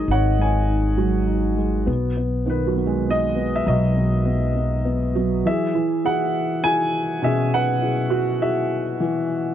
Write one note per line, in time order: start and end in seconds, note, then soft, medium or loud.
0.00 0.92 D#3 medium
0.00 0.96 F#3 soft
0.00 0.38 G#3 medium
0.00 0.67 D#4 soft
0.00 1.89 G#4 medium
0.00 0.12 C#5 medium
0.00 1.89 D#5 medium
0.07 1.83 G#1 medium
0.07 1.83 D#3 medium
0.07 0.41 F#5 medium
0.12 0.41 C#5 medium
0.38 0.95 G#3 soft
0.38 1.55 G#5 medium
0.43 1.56 C#5 medium
0.67 1.24 D#4 soft
0.97 2.13 F#3 medium
0.97 1.55 G#3 soft
1.26 1.84 D#4 soft
1.57 1.86 G#3 soft
1.86 3.62 B1 medium
1.86 2.15 B3 medium
2.17 2.44 B3 soft
2.46 4.80 D#3 medium
2.46 2.74 B3 medium
2.46 3.10 B4 medium
2.67 4.98 F#3 soft
2.76 3.05 B3 soft
2.86 5.15 G#3 soft
3.07 3.34 B3 medium
3.07 3.54 D#5 loud
3.36 3.94 B3 medium
3.56 3.69 E5 medium
3.66 5.42 B1 medium
3.66 5.41 F#3 medium
3.66 5.12 F#4 medium
3.66 5.12 D#5 medium
3.96 4.24 B3 soft
4.25 4.54 B3 medium
4.55 4.83 B3 soft
4.85 5.15 B3 soft
5.15 5.71 F#3 soft
5.15 5.45 B3 medium
5.45 7.19 E3 medium
5.45 6.04 G#4 medium
5.45 6.07 E5 medium
5.75 8.06 E3 medium
6.05 6.62 E4 soft
6.05 6.62 F#4 soft
6.05 6.62 G#4 medium
6.05 6.66 F#5 medium
6.63 7.21 E4 soft
6.63 7.21 F#4 soft
6.63 7.21 G#4 medium
6.63 7.25 G#5 loud
7.22 8.96 B2 medium
7.22 9.53 C#4 soft
7.22 7.81 G#4 medium
7.22 7.54 E5 medium
7.54 8.38 B4 medium
7.54 8.44 F#5 loud
7.81 8.39 E4 soft
7.81 8.39 F#4 soft
7.81 8.39 G#4 medium
8.10 9.54 F#4 medium
8.41 8.98 E4 soft
8.41 8.99 F#4 soft
8.41 8.98 G#4 soft
8.41 8.83 E5 medium
9.00 9.54 E3 medium